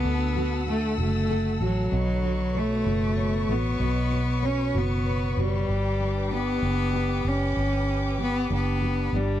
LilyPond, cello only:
\new Staff \with { instrumentName = "Cello" } { \time 6/8 \key b \minor \tempo 4. = 64 b4 a8 a4 fis8~ | fis4 a4. b8~ | b4 cis'8 b4 g8~ | g4 b4. cis'8~ |
cis'4 b8 b4 g8 | }